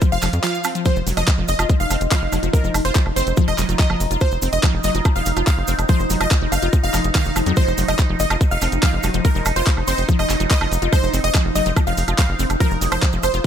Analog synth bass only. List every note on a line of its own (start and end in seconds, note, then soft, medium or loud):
0.12 0.18 F1 medium
0.23 0.29 F1 loud
0.33 0.39 F2 medium
0.96 1.02 F1 medium
1.07 1.13 F1 loud
1.17 1.23 F1 medium
1.38 1.44 F1 medium
1.49 1.55 F#1 loud
1.59 1.65 F1 loud
1.80 1.86 F1 medium
1.90 1.97 F1 loud
2.01 2.07 F1 medium
2.22 2.28 F#1 medium
2.32 2.39 F1 loud
2.43 2.49 F1 medium
2.64 2.70 F1 medium
2.74 2.81 F1 loud
2.85 2.91 F1 medium
3.06 3.12 F1 medium
3.16 3.23 F#1 loud
3.27 3.33 F1 medium
3.48 3.54 F1 medium
3.58 3.65 F1 loud
3.69 3.75 F1 medium
3.90 3.96 F#1 medium
4.00 4.07 F1 loud
4.11 4.17 F1 medium
4.32 4.38 F1 medium
4.42 4.48 F1 loud
4.53 4.59 F1 medium
4.74 4.80 F1 medium
4.84 4.90 F#1 loud
4.95 5.01 F1 loud
5.16 5.22 F1 medium
5.26 5.32 F1 loud
5.37 5.43 F1 medium
5.58 5.64 F#1 medium
5.68 5.74 F1 loud
5.79 5.85 F1 medium
6.00 6.06 F1 medium
6.10 6.16 F1 loud
6.21 6.27 F1 medium
6.42 6.48 F1 medium
6.52 6.58 F#1 loud
6.62 6.69 F1 loud
6.83 6.90 F1 medium
6.94 7.00 F1 loud
7.04 7.11 F1 medium
7.25 7.32 F1 medium
7.36 7.42 F1 loud
7.46 7.53 F2 medium
7.67 7.74 F1 medium
7.78 7.84 F1 loud
7.88 7.95 F1 medium
8.09 8.16 F1 medium
8.20 8.26 F#1 loud
8.30 8.37 F1 medium
8.51 8.58 F1 medium
8.62 8.68 F1 loud
8.72 8.79 F1 medium
8.93 9.00 F#1 medium
9.04 9.10 F1 loud
9.14 9.21 F1 medium
9.35 9.42 F1 medium
9.46 9.52 F1 loud
9.56 9.62 F1 medium
9.77 9.83 F1 medium
9.88 9.94 F#1 loud
9.98 10.04 F1 loud
10.19 10.25 F1 medium
10.30 10.36 F1 loud
10.40 10.46 F1 medium
10.61 10.67 F#1 medium
10.72 10.78 F1 loud
10.82 10.88 F1 medium
11.03 11.09 F1 medium
11.14 11.20 F1 loud
11.24 11.30 F1 medium
11.45 11.51 F1 medium
11.55 11.62 F#1 loud
11.66 11.72 F1 loud
11.87 11.93 F1 medium
11.97 12.04 F1 loud
12.08 12.14 F1 medium
12.29 12.35 F#1 medium
12.39 12.46 F1 loud
12.50 12.56 F1 medium
12.71 12.77 F1 medium
12.81 12.88 F1 loud
12.92 12.98 F1 medium
13.13 13.19 F1 medium
13.23 13.30 F#1 loud
13.34 13.40 F1 loud